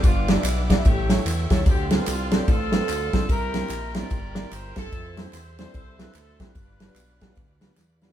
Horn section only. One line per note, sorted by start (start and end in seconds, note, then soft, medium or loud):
0.05 0.29 B3 medium
0.05 0.81 D4 medium
0.05 0.30 F4 loud
0.30 0.82 B3 medium
0.30 0.70 E4 medium
0.72 0.85 E4 medium
0.87 1.63 C#4 medium
0.87 1.63 E4 medium
0.87 1.11 G4 medium
1.53 1.59 A4 medium
1.67 2.44 C4 medium
1.67 1.91 G4 loud
1.95 2.08 F4 medium
2.09 2.32 F4 loud
2.34 2.47 G4 medium
2.47 3.25 C4 medium
2.47 3.25 F4 medium
2.47 3.30 A4 loud
3.30 4.07 E4 medium
3.30 3.94 G4 medium
3.30 3.94 A#4 loud
3.95 4.73 G4 medium
3.95 4.73 A#4 medium
3.95 4.52 D5 loud
4.52 4.77 C5 loud
4.77 5.55 C4 medium
4.77 5.54 E4 medium
4.77 5.15 A4 loud
5.18 5.31 C5 loud
5.32 5.56 C5 loud
5.58 5.72 C5 medium
5.74 6.51 E4 medium
5.74 6.14 A4 medium
5.74 5.97 C5 loud
5.99 6.14 B4 loud
6.15 6.40 A4 loud
6.39 7.98 D4 medium
6.39 7.98 F4 medium
6.39 7.98 B4 loud